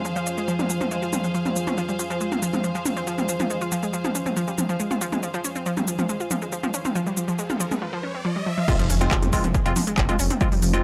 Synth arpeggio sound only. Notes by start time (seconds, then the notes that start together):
0.05 F3
0.16 F3
0.26 C#4
0.38 G#3
0.48 F3
0.59 G3
0.70 F3
0.81 F3
0.91 G#3
1.02 F4
1.13 G3
1.24 F3
1.34 F3
1.46 G3
1.56 F3
1.67 C#4
1.78 F3
1.89 G3
1.99 F3
2.10 F3
2.21 G#3
2.32 F4
2.42 F3
2.53 G#3
2.64 F3
2.75 F3
2.85 C#4
2.97 C4
3.07 F3
3.18 G3
3.29 F3
3.40 F3
3.50 G#3
3.61 F4
3.72 F3
3.83 G#3
3.93 F3
4.04 F3
4.15 C#4
4.26 C4
4.36 F3
4.48 G3
4.58 F3
4.69 F3
4.80 G#3
4.91 F4
5.01 F3
5.12 G#3
5.23 F3
5.34 F3
5.44 C#4
5.56 C4
5.66 F3
5.77 G3
5.88 F3
5.99 F3
6.09 G#3
6.20 F4
6.31 F3
6.42 G#3
6.52 F3
6.63 F3
6.74 C#4
6.85 C4
6.95 F3
7.07 G3
7.17 F3
7.28 F3
7.39 G#3
7.50 F4
7.60 F3
7.71 G#3
7.82 F3
7.93 F3
8.03 C#4
8.14 C4
8.25 F3
8.36 G3
8.46 F3
8.58 F3
8.68 F3
8.79 F3
8.90 C#4
9.01 C4
9.11 F3
9.22 G3
9.33 F3
9.44 F3
9.55 G#3
9.66 F4
9.76 F3
9.87 G#3
9.98 F3
10.09 F3
10.19 C#4
10.30 C4
10.41 F3
10.52 G3
10.62 F3
10.74 F3